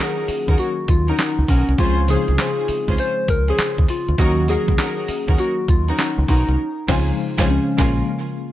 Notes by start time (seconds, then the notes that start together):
Already playing: D#3 F#3 A#3 C#4 F4 F#4 G#4
0.00 C#4 D#4 F#4 A#4
0.28 muted fingered electric bass stroke, open hi-hat, tambourine
0.48 D#2 C#4 D#4 F#4 A#4, kick, closed hi-hat
0.58 F#4, closed hi-hat, tambourine
0.88 D#2 F4, kick, closed hi-hat, tambourine
1.08 C#4 D#4 F#4 A#4, closed hi-hat
1.19 snare, clap, closed hi-hat, tambourine
1.38 C#2
1.48 B1 C#4 D#4 F#4 A#4, kick, open hi-hat
1.68 C2, closed hi-hat
1.78 C#2 C#3 F3 G#3 C4 C#4 F4 G#4 C5, kick, closed hi-hat, tambourine
2.08 C#3 F3 G#3 C4 C#4 D#4 F4 G#4 C5, closed hi-hat, tambourine
2.16 F4
2.28 C2, closed hi-hat
2.38 C#4 F4 G#4 C5, snare, clap, closed hi-hat, tambourine
2.68 muted fingered electric bass stroke, open hi-hat, tambourine
2.88 C#2 C#4 F4 G#4 C5, kick, closed hi-hat
2.98 C5, closed hi-hat, tambourine
3.28 C#2 A#4, kick, closed hi-hat, tambourine
3.48 C#4 F4 G#4 C5, closed hi-hat
3.58 muted fingered electric bass stroke, snare, clap, closed hi-hat, tambourine
3.78 D#2, kick
3.88 F4, open hi-hat
4.08 D2, closed hi-hat
4.18 D#2 D#3 F#3 A#3 C#4 D#4 F#4 A#4, kick, closed hi-hat, tambourine
4.48 D#3 F#3 A#3 C#4 D#4 F#4 G#4 A#4, closed hi-hat, tambourine
4.68 C#2, kick, closed hi-hat
4.78 C#4 D#4 F#4 A#4, snare, clap, closed hi-hat, tambourine
5.08 muted fingered electric bass stroke, open hi-hat, tambourine
5.28 D#2 C#4 D#4 F#4 A#4, kick, closed hi-hat
5.38 F#4, closed hi-hat, tambourine
5.68 D#2 F4, kick, closed hi-hat, tambourine
5.88 C#4 D#4 F#4 A#4, closed hi-hat
5.98 snare, clap, closed hi-hat, tambourine
6.18 C#2
6.28 B1 C#4 D#4 F#4 A#4, kick, open hi-hat
6.48 C2, closed hi-hat
6.88 C#2 C#3 F3 G#3 C4 C#4 F4 G#4 C5, kick, snare, crash
7.38 C#2 C#3 F3 G#3 C4 C#4 F4 G#4 C5, kick, snare
7.50 C#4
7.78 A#1 C#3 F3 G#3 A#3 C#4 F4 G#4 A#4, kick, snare